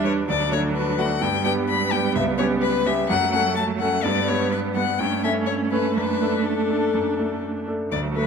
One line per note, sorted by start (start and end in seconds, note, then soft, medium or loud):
0.00 0.30 E2 medium
0.00 0.04 G3 soft
0.00 0.26 G3 medium
0.00 0.05 D4 soft
0.00 0.27 D4 medium
0.00 0.05 B4 medium
0.04 0.25 G3 soft
0.04 0.26 D4 soft
0.04 0.26 B4 soft
0.04 0.13 C#5 medium
0.27 0.51 D2 medium
0.27 1.17 F#3 medium
0.27 1.18 D4 medium
0.27 0.51 D5 medium
0.52 0.94 A3 soft
0.52 0.94 D4 soft
0.52 0.95 F#4 soft
0.52 0.60 C#5 medium
0.75 1.01 B4 medium
0.98 1.19 A3 soft
0.98 1.19 D4 medium
0.98 1.20 F#4 medium
0.98 1.23 F#5 medium
1.21 1.44 G2 medium
1.21 3.05 G3 medium
1.21 3.06 B3 medium
1.21 1.44 G5 medium
1.45 1.88 B3 soft
1.45 1.88 D4 medium
1.45 1.88 G4 medium
1.45 1.53 G5 medium
1.69 1.93 B5 medium
1.92 2.13 B3 soft
1.92 2.13 D4 soft
1.92 2.14 G4 soft
1.92 2.15 G5 medium
2.15 2.38 C#2 medium
2.15 2.23 E5 medium
2.38 2.82 B3 soft
2.38 2.82 C#4 soft
2.38 2.83 G4 medium
2.38 2.46 C#5 medium
2.62 2.88 B4 medium
2.86 3.07 B3 medium
2.86 3.07 C#4 medium
2.86 3.08 G4 medium
2.86 3.08 E5 medium
3.09 3.33 F#2 medium
3.09 4.00 F#3 medium
3.09 4.00 A3 medium
3.09 3.32 F#5 medium
3.33 3.77 A3 medium
3.33 3.77 C#4 medium
3.33 3.77 A4 medium
3.33 3.55 F#5 medium
3.56 3.64 A5 medium
3.80 4.02 A3 soft
3.80 4.03 C#4 soft
3.80 4.03 A4 soft
3.80 4.05 F#5 medium
4.03 4.28 G2 medium
4.03 4.95 G3 medium
4.03 4.95 B3 medium
4.03 4.29 D5 medium
4.28 4.72 G3 soft
4.28 4.72 B3 soft
4.28 4.72 B4 soft
4.28 4.51 C#5 medium
4.51 4.59 B4 medium
4.75 4.97 G3 soft
4.75 4.98 B3 soft
4.75 4.98 B4 medium
4.75 5.00 F#5 medium
4.99 5.23 G2 medium
4.99 7.68 A3 medium
4.99 5.93 C#4 medium
4.99 5.23 G5 medium
5.24 5.68 A3 soft
5.24 5.68 C#4 soft
5.24 5.69 A4 soft
5.24 5.32 E5 medium
5.46 5.54 C#5 medium
5.71 5.94 A3 soft
5.71 5.94 C#4 soft
5.71 5.94 A4 soft
5.71 5.95 B4 medium
5.95 6.21 F#2 medium
5.95 7.68 D4 medium
5.95 6.47 B4 medium
6.21 6.66 A3 soft
6.21 6.66 D4 soft
6.21 6.67 A4 soft
6.45 7.43 A4 medium
6.70 6.92 A3 soft
6.70 6.92 D4 soft
6.70 6.93 A4 soft
6.94 7.18 F#2 soft
7.19 7.64 A3 soft
7.19 7.64 D4 soft
7.19 7.64 A4 soft
7.68 7.90 A3 soft
7.68 7.90 D4 soft
7.68 7.90 A4 soft
7.92 8.15 D2 medium
7.92 8.27 F#3 medium
7.92 8.27 A3 medium
7.92 8.00 D5 medium
8.16 8.27 A3 soft
8.16 8.27 F#4 soft
8.16 8.27 A4 soft
8.16 8.27 B4 medium